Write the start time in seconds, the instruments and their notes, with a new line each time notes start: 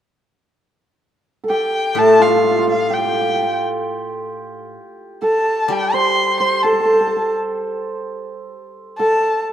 1.44 hammered dulcimer A4
1.50 hammered dulcimer G4, erhu G5
1.95 guzheng A2, hammered dulcimer A4, erhu A5
2.20 hammered dulcimer F4, erhu F5
2.27 hammered dulcimer F4
2.36 hammered dulcimer F4
2.44 hammered dulcimer F4
2.51 hammered dulcimer F4
2.59 hammered dulcimer F4
2.67 hammered dulcimer F4, erhu F5
2.74 hammered dulcimer F4
2.90 hammered dulcimer G4, erhu G5
2.98 hammered dulcimer G4
3.05 hammered dulcimer G4
3.12 hammered dulcimer G4
3.21 hammered dulcimer G4
3.29 hammered dulcimer G4
3.36 hammered dulcimer G4
3.43 hammered dulcimer G4
5.22 hammered dulcimer A4, erhu A5
5.68 guzheng G3, hammered dulcimer G4
5.72 erhu G5
5.94 hammered dulcimer C5, erhu C6
6.40 hammered dulcimer C5, erhu C6
6.63 hammered dulcimer A4, erhu A5
6.72 hammered dulcimer A4
6.80 hammered dulcimer A4
6.85 hammered dulcimer A4
6.93 hammered dulcimer A4
7.00 hammered dulcimer A4
7.07 hammered dulcimer A4
7.16 hammered dulcimer A4
8.98 hammered dulcimer A4, erhu A5